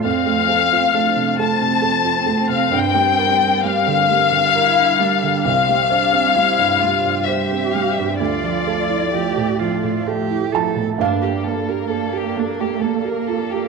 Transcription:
<<
  \new Staff \with { instrumentName = "Violin section" } { \time 3/4 \key g \dorian \tempo 4 = 66 f''4. a''4~ a''16 f''16 | g''4 f''2 | f''2 e''8 f''16 e''16 | d''2 r4 |
d'16 g'16 a'16 bes'16 a'16 g'16 d'16 g'16 a'16 bes'16 a'16 g'16 | }
  \new Staff \with { instrumentName = "Analog synth pad" } { \time 3/4 \key g \dorian << { c''2. | bes'2. | c''2. | e''2. |
d''2. | } \\ { <f a>2. | <g g'>2.~ | <g g'>2. | <f a>2. |
<bes a'>2. | } >> }
  \new Staff \with { instrumentName = "Cello" } { \time 3/4 \key g \dorian c'4 d'8 c'4.~ | c'2 e'8 d'8 | c'8 d'8 e'8 f'8 g'4 | f'4 g'8 f'8 g'8 a'8 |
bes2. | }
  \new Staff \with { instrumentName = "Felt piano" } { \time 3/4 \key g \dorian r2. | r2. | r2. | r2 r8 a''8 |
f''2. | }
  \new Staff \with { instrumentName = "Felt piano" } { \time 3/4 \key g \dorian f,16 a16 a'16 f'16 a16 c16 a16 c16 a'16 f'16 a16 c16 | g,16 g16 bes'16 d'16 g16 d16 g16 d16 bes'16 d'16 g16 d16 | c,16 g16 c''16 c'16 g16 g,16 g16 g,16 c''16 c'16 g16 g,16 | d,16 f16 a'16 e'16 f16 a,16 f16 a,16 a'16 e'16 f16 a,16 |
g,16 g'16 bes16 g'16 a'16 g'16 bes16 g'16 bes16 g'16 f'16 g'16 | }
>>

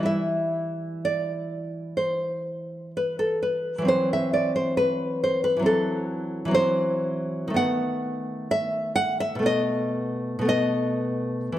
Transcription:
\new Staff \with { instrumentName = "Nylon-string guitar" } { \time 4/4 \key e \minor \tempo 4 = 63 << { e''4 d''4 c''4 b'16 a'16 b'8 | c''16 e''16 d''16 c''16 b'8 c''16 b'16 a'4 c''4 | fis''4 e''8 fis''16 e''16 dis''4 dis''4 | } \\ { <e g e'>1 | <e fis c'>2 <e fis c'>4 <e fis c'>4 | <dis a b>2 <b, a b>4 <b, a b>4 | } >> }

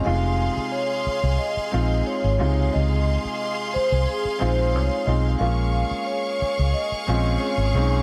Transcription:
<<
  \new Staff \with { instrumentName = "Violin section" } { \time 4/4 \key des \major \tempo 4 = 90 <aes' f'' c'''>2.~ <aes' f'' c'''>8 <aes' f'' c'''>8~ | <aes' f'' c'''>1 | <aes' f'' des'''>1 | }
  \new Staff \with { instrumentName = "Vibraphone" } { \time 4/4 \key des \major f''4 des''4 ees''4 des''4 | ees''4. c''8 aes'8 c''8 des''8 ees''8 | f''4 des''4 ees''4 des''4 | }
  \new Staff \with { instrumentName = "Grand piano" } { \time 4/4 \key des \major <c aes ees' f'>4. r4 <aes c' ees' f'>4 <c aes ees' f'>8~ | <c aes ees' f'>4 r4. <aes c' ees' f'>4 <aes c' ees' f'>8 | <aes bes des' f'>4. r4 <aes c' des' f'>4 <aes c' des' ees'>8 | }
  \new Staff \with { instrumentName = "Fingered electric bass" } { \clef bass \time 4/4 \key des \major f,,8. r4 c,16 r8 bes,,8 r16 aes,,16 des,8 | des,8. r4 c,16 r8 bes,,8 c,16 r16 ces,8 | bes,,8. r4 des,16 r8 bes,,8 r16 aes,,16 ces,8 | }
>>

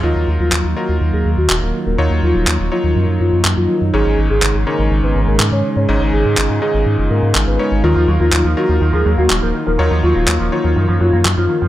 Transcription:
<<
  \new Staff \with { instrumentName = "Soft synth lead" } { \time 4/4 \key ees \minor \tempo 4 = 123 f'8 r16 f'8 r16 ges'8 r16 aes'16 r16 ges'16 r16 bes'16 r16 bes'16~ | bes'16 r16 f'8. r16 f'8. r16 f'8 r16 f'8 r16 | aes'8 r16 aes'8 r16 bes'8 r16 ces''16 r16 bes'16 r16 des''16 r16 des''16~ | des''16 r16 aes'8. r16 aes'8. r16 bes'8 r16 ces''8 r16 |
f'8 r16 f'8 r16 ges'8 r16 aes'16 r16 ges'16 r16 bes'16 r16 bes'16~ | bes'16 r16 f'8. r16 f'8. r16 f'8 r16 f'8 r16 | }
  \new Staff \with { instrumentName = "Electric grand piano" } { \time 4/4 \key ees \minor <ges ees' f' bes'>4. <ges ees' f' bes'>2~ <ges ees' f' bes'>8 | <ges ees' f' des''>4. <ges ees' f' des''>2~ <ges ees' f' des''>8 | <aes, aes des' ees' des''>4. <aes, aes des' ees' des''>2~ <aes, aes des' ees' des''>8 | <aes, aes des' ees' ees''>4. <aes, aes des' ees' ees''>2 <aes des' ees' des''>8 |
<ges ees' f' bes'>4. <ges ees' f' bes'>2~ <ges ees' f' bes'>8 | <ges ees' f' des''>4. <ges ees' f' des''>2~ <ges ees' f' des''>8 | }
  \new Staff \with { instrumentName = "Analog synth pad" } { \time 4/4 \key ees \minor << { <ees ges bes>1~ | <ees ges bes>1 | <des aes aes'>1~ | <des aes aes'>1 |
bes1~ | bes1 | } \\ { f'1 | ees'1~ | ees'1 | f'1~ |
f'1~ | f'1 | } >> }
  \new Staff \with { instrumentName = "Clean electric guitar" } { \clef bass \time 4/4 \key ees \minor r1 | r1 | r1 | r1 |
ees16 f16 ges16 bes16 ges16 f16 ees16 f16 ees16 f16 ges16 bes16 ges16 f16 ees16 f16 | ees16 f16 ges16 bes16 ges16 f16 ees16 f16 ees16 f16 ges16 bes16 ges16 f16 ees16 f16 | }
  \new Staff \with { instrumentName = "Analog synth bass" } { \clef bass \time 4/4 \key ees \minor ees,16 ees,16 ees,16 ees,16 ees,16 ees,16 r16 ees,16 ees,16 ees,16 ees,16 ees,16 ees,,16 ees,,16 r16 ees,,16 | ees,16 ees,16 ees,16 ees,,16 ees,16 ees,,16 r16 ees,16 ges,16 ges,16 ges,16 ges,16 ges,16 ges,16 r16 ges,16 | aes,,16 aes,,16 aes,,16 aes,,16 aes,,16 aes,,16 r16 aes,,16 aes,,16 aes,,16 aes,,16 aes,,16 aes,16 aes,16 r16 aes,16 | aes,,16 aes,,16 aes,,16 aes,16 aes,,16 aes,16 r16 aes,,16 aes,16 ges,,16 aes,16 aes,16 aes,,16 aes,,16 r16 aes,,16 |
ees,16 ees,16 ees,16 ees,16 ees,16 ees,16 r16 ees,16 ees,16 ees,16 ees,16 ees,16 ees,,16 ees,,16 r16 ees,,16 | ees,16 ees,16 ees,16 ees,,16 ees,16 ees,,16 r16 ees,16 ges,16 ges,16 ges,16 ges,16 ges,16 ges,16 r16 ges,16 | }
  \new DrumStaff \with { instrumentName = "Drums" } \drummode { \time 4/4 r4 hc4 r4 hc4 | r4 hc4 r4 hc4 | r4 hc4 r4 hc4 | r4 hc4 r4 hc4 |
r4 hc4 r4 hc4 | r4 hc4 r4 hc4 | }
>>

